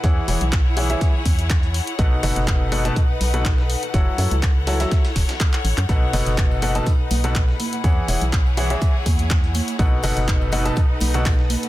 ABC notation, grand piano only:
X:1
M:4/4
L:1/16
Q:"Swing 16ths" 1/4=123
K:Bmix
V:1 name="Grand piano"
[E,EGcf]2 [E,EGcf] z3 [E,EGcf] [E,EGce]2 z6 z | [B,,DABf]2 [B,,DABf]4 [B,,DABf] [B,,DABa] z3 [B,,DABf] z4 | [F,EAcf]2 [F,EAcf] z3 [F,EAcf] [F,EAce]2 z6 z | [B,,DABf]2 [B,,DABf]4 [B,,DABf] [B,,DABa] z3 [B,,DABf] z4 |
[E,EGcf]2 [E,EGcf] z3 [E,EGcf] [E,EGce]2 z6 z | [B,,DABf]2 [B,,DABf]4 [B,,DABf] [B,,DABa] z3 [B,,DABf] z4 |]